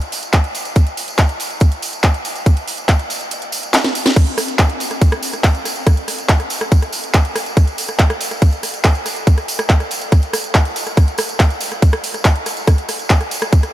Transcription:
0.02 closed hi-hat, tambourine
0.12 open hi-hat, tambourine
0.23 closed hi-hat, tambourine
0.33 kick, clap, closed hi-hat, tambourine
0.44 closed hi-hat, tambourine
0.55 open hi-hat, tambourine
0.65 closed hi-hat, tambourine
0.76 kick, closed hi-hat, tambourine
0.87 closed hi-hat, tambourine
0.97 open hi-hat, tambourine
1.08 closed hi-hat, tambourine
1.19 kick, clap, closed hi-hat, tambourine
1.29 closed hi-hat, tambourine
1.40 open hi-hat, tambourine
1.50 closed hi-hat, tambourine
1.60 kick, closed hi-hat, tambourine
1.72 closed hi-hat, tambourine
1.82 open hi-hat, tambourine
1.93 closed hi-hat, tambourine
2.03 kick, clap, closed hi-hat, tambourine
2.14 closed hi-hat, tambourine
2.25 open hi-hat, tambourine
2.36 closed hi-hat, tambourine
2.46 kick, closed hi-hat, tambourine
2.56 closed hi-hat, tambourine
2.67 open hi-hat, tambourine
2.77 closed hi-hat, tambourine
2.88 kick, clap, closed hi-hat, tambourine
2.99 closed hi-hat, tambourine
3.10 open hi-hat, tambourine
3.21 closed hi-hat, tambourine
3.31 closed hi-hat, tambourine
3.42 closed hi-hat, tambourine
3.52 open hi-hat, tambourine
3.63 closed hi-hat, tambourine
3.74 snare, clap, closed hi-hat, tambourine
3.84 snare, closed hi-hat, tambourine
3.95 open hi-hat, tambourine
4.06 snare, closed hi-hat, tambourine
4.16 kick, cross-stick, closed hi-hat, tambourine, crash
4.27 closed hi-hat, tambourine
4.38 cross-stick, open hi-hat, tambourine
4.48 closed hi-hat, tambourine
4.59 kick, cross-stick, clap, closed hi-hat, tambourine
4.69 closed hi-hat, tambourine
4.80 open hi-hat, tambourine
4.91 cross-stick, closed hi-hat, tambourine
5.02 kick, closed hi-hat, tambourine
5.12 cross-stick, closed hi-hat, tambourine
5.23 open hi-hat, tambourine
5.33 cross-stick, closed hi-hat, tambourine
5.44 kick, clap, closed hi-hat, tambourine
5.55 closed hi-hat, tambourine
5.65 cross-stick, open hi-hat, tambourine
5.75 closed hi-hat, tambourine
5.87 kick, cross-stick, closed hi-hat, tambourine
5.97 closed hi-hat, tambourine
6.08 cross-stick, open hi-hat, tambourine
6.19 closed hi-hat, tambourine
6.29 kick, clap, closed hi-hat, tambourine
6.40 cross-stick, closed hi-hat, tambourine
6.50 open hi-hat, tambourine
6.61 cross-stick, closed hi-hat, tambourine
6.72 kick, closed hi-hat, tambourine
6.82 cross-stick, closed hi-hat, tambourine
6.92 open hi-hat, tambourine
7.03 closed hi-hat, tambourine
7.14 kick, cross-stick, clap, closed hi-hat, tambourine
7.25 closed hi-hat, tambourine
7.36 cross-stick, open hi-hat, tambourine
7.46 closed hi-hat, tambourine
7.57 kick, cross-stick, closed hi-hat, tambourine
7.67 closed hi-hat, tambourine
7.78 open hi-hat, tambourine
7.88 cross-stick, closed hi-hat, tambourine
7.99 kick, clap, closed hi-hat, tambourine
8.10 cross-stick, closed hi-hat, tambourine
8.21 open hi-hat, tambourine
8.31 cross-stick, closed hi-hat, tambourine
8.42 kick, closed hi-hat, tambourine
8.52 closed hi-hat, tambourine
8.63 cross-stick, open hi-hat, tambourine
8.74 closed hi-hat, tambourine
8.84 kick, cross-stick, clap, closed hi-hat, tambourine
8.95 closed hi-hat, tambourine
9.06 cross-stick, open hi-hat, tambourine
9.16 closed hi-hat, tambourine
9.27 kick, closed hi-hat, tambourine
9.37 cross-stick, closed hi-hat, tambourine
9.48 open hi-hat, tambourine
9.59 cross-stick, closed hi-hat, tambourine
9.70 kick, clap, closed hi-hat, tambourine
9.80 cross-stick, closed hi-hat, tambourine
9.91 open hi-hat, tambourine
10.01 closed hi-hat, tambourine
10.12 kick, cross-stick, closed hi-hat, tambourine
10.22 closed hi-hat, tambourine
10.33 cross-stick, open hi-hat, tambourine
10.44 closed hi-hat, tambourine
10.55 kick, cross-stick, clap, closed hi-hat, tambourine
10.65 closed hi-hat, tambourine
10.76 open hi-hat, tambourine
10.87 cross-stick, closed hi-hat, tambourine
10.97 kick, cross-stick, closed hi-hat, tambourine
11.08 closed hi-hat, tambourine
11.18 cross-stick, open hi-hat, tambourine
11.29 closed hi-hat, tambourine
11.40 kick, cross-stick, clap, closed hi-hat, tambourine
11.50 closed hi-hat, tambourine
11.60 open hi-hat, tambourine
11.71 cross-stick, closed hi-hat, tambourine
11.82 kick, closed hi-hat, tambourine
11.93 cross-stick, closed hi-hat, tambourine
12.04 open hi-hat, tambourine
12.14 cross-stick, closed hi-hat, tambourine
12.25 kick, clap, closed hi-hat, tambourine
12.35 closed hi-hat, tambourine
12.46 cross-stick, open hi-hat, tambourine
12.57 closed hi-hat, tambourine
12.67 kick, cross-stick, closed hi-hat, tambourine
12.78 closed hi-hat, tambourine
12.89 cross-stick, open hi-hat, tambourine
12.99 closed hi-hat, tambourine
13.10 kick, clap, closed hi-hat, tambourine
13.21 cross-stick, closed hi-hat, tambourine
13.31 open hi-hat, tambourine
13.42 cross-stick, closed hi-hat, tambourine
13.53 kick, closed hi-hat, tambourine
13.63 cross-stick, closed hi-hat, tambourine

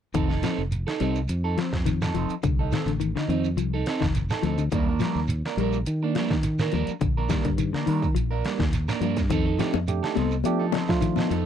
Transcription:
0.14 F1 D#3 C4 D#4 A4, kick, closed hi-hat, shekere
0.29 D#4 A4, snare
0.43 F3 C4 D#4 A4, snare, closed hi-hat, shekere
0.58 F1, shekere
0.72 closed hi-hat, shekere
0.87 D#4 A4, snare
1.00 C2 G3 C4 D#4 A4, closed hi-hat, shekere
1.15 shekere
1.28 F2, closed hi-hat, shekere
1.44 D#4 A4
1.57 F3 C4, muted clean electric guitar stroke, snare, closed hi-hat
1.73 F2, kick, snare, shekere
1.86 D#3, closed hi-hat, shekere
2.02 D#4 A4, snare, shekere
2.14 F1 F3 C4 D#4 A4, closed hi-hat, shekere
2.29 closed hi-hat, shekere
2.43 C2 D3, kick, closed hi-hat, shekere
2.59 D#4 A4
2.72 D#3 C4 A4, snare, closed hi-hat, shekere
2.86 A1 D3, closed hi-hat, shekere
3.00 D#3, closed hi-hat, shekere
3.16 D3 D#4, muted clean electric guitar stroke, snare
3.28 F2 D#3 C4 D#4, closed hi-hat, shekere
3.44 shekere
3.56 C2 F3, closed hi-hat, shekere
3.74 D#4 A4
3.86 C4 D#4 A4, snare, closed hi-hat
4.00 F1 D#3, kick, snare, shekere
4.15 closed hi-hat, shekere
4.30 D#4 A4, snare, shekere
4.43 D2 F3 C4 D#4 A4, closed hi-hat, shekere
4.58 D3, closed hi-hat, shekere
4.71 D#2 D#3 G3 A#3 D4 A#4, kick, closed hi-hat, shekere
4.88 A#3 D4 A#4
4.99 F3 G3 A#3 D4 A#4, snare, closed hi-hat, shekere
5.15 D#2, snare, shekere
5.28 closed hi-hat, shekere
5.45 A#3 D4 A#4, snare
5.57 A#1 G3 A#3 D4 A#4, closed hi-hat, shekere
5.73 shekere
5.86 D#3, closed hi-hat, shekere
6.03 A#3 D4, muted clean electric guitar stroke
6.15 F3 G3 A#3 D4 A#4, snare, closed hi-hat
6.30 D#3, kick, snare, shekere
6.43 muted clean electric guitar stroke, closed hi-hat, shekere
6.59 A#3 D4 A#4, snare, shekere
6.72 D#2 F3 G3 A#3 D4 A#4, closed hi-hat, shekere
6.87 muted fingered electric bass stroke, closed hi-hat, shekere
7.01 A#1 D3, kick, closed hi-hat, shekere
7.17 A#3 D4 A#4
7.29 D#3 G3 A#3 D4 A#4, kick, snare, closed hi-hat, shekere
7.45 G2 D3, kick, closed hi-hat, shekere
7.58 D#3, closed hi-hat, shekere
7.73 D3 A#3 D4 A#4, muted fingered electric bass stroke, snare
7.86 D#3 G3 A#3 D4 A#4, open hi-hat, shekere
8.02 kick, shekere
8.15 A#1 F3, closed hi-hat, shekere
8.31 A#3 D4 A#4
8.45 G3 A#3 D4, muted clean electric guitar stroke, snare, closed hi-hat
8.59 D#2 D#3, kick, snare, shekere
8.73 closed hi-hat, shekere
8.88 A#3 D4 A#4, snare, shekere
9.01 G2 F3 G3 A#3 D4 A#4, closed hi-hat, shekere
9.17 muted clean electric guitar stroke, kick, snare, closed hi-hat, shekere
9.30 F2 D#3 C4 D#4 A4, kick, closed hi-hat, shekere
9.46 D#4 A4
9.59 F3 A3 C4 D4 D#4 G4 A4, snare, closed hi-hat, shekere
9.74 F2, high conga, shekere
9.88 A3 D4 G4, closed hi-hat, shekere
10.03 D#4 A4, snare
10.15 C2 G3 C4 D#4 A4, snare, closed hi-hat, high conga, shekere
10.31 shekere
10.44 F3 A3 D4 G4, closed hi-hat, high conga, shekere
10.59 D#4 A4
10.72 F3 C4 D#4 A4, snare, closed hi-hat, high conga
10.89 F3 A3 D4 F4, kick, snare, shekere
11.01 D#3, closed hi-hat, shekere
11.16 D#4 A4, snare, high conga, shekere
11.30 F2 F3 C4 D#4 A4, closed hi-hat, shekere

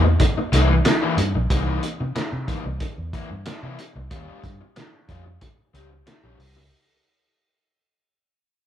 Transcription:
Already playing: E2
0.05 muted overdriven electric guitar stroke
0.20 muted overdriven electric guitar stroke, kick, closed hi-hat
0.38 muted overdriven electric guitar stroke
0.52 C2 E3 A#3 E4, closed hi-hat
0.70 muted overdriven electric guitar stroke
0.85 muted overdriven electric guitar stroke, snare, clap, closed hi-hat
1.02 E3 A#3 E4
1.17 G2, muted overdriven electric guitar stroke, closed hi-hat
1.35 A#1, muted overdriven electric guitar stroke
1.50 C2 E3 A#3 D#4, kick, closed hi-hat
1.83 closed hi-hat
2.00 C3, muted overdriven electric guitar stroke
2.16 muted fingered electric bass stroke, muted overdriven electric guitar stroke, snare, clap, closed hi-hat
2.33 C3
2.48 E3 A#3 D#4, kick, closed hi-hat
2.65 C2, muted overdriven electric guitar stroke
2.80 muted fingered electric bass stroke, muted overdriven electric guitar stroke, kick, closed hi-hat
2.98 E2
3.13 E3 A#3 E4, kick, closed hi-hat
3.30 G2, muted overdriven electric guitar stroke
3.46 muted overdriven electric guitar stroke, snare, clap, closed hi-hat
3.63 C3 E3 A#3 E4
3.79 muted overdriven electric guitar stroke, closed hi-hat
3.95 C2, muted overdriven electric guitar stroke
4.11 D#2 G3 C#4 F4, kick, closed hi-hat
4.44 G2, kick, closed hi-hat
4.61 muted overdriven electric guitar stroke
4.76 muted overdriven electric guitar stroke, snare, clap, closed hi-hat
5.09 F2 G3 C#4 F4, kick, closed hi-hat
5.26 muted overdriven electric guitar stroke
5.41 muted overdriven electric guitar stroke, kick, closed hi-hat
5.74 C#2 G3 C#4 G4, closed hi-hat
5.91 muted overdriven electric guitar stroke
6.06 muted overdriven electric guitar stroke, snare, clap, closed hi-hat
6.23 A#1 G3 C#4 G4
6.39 C2, muted overdriven electric guitar stroke, open hi-hat
6.56 C#2, muted overdriven electric guitar stroke

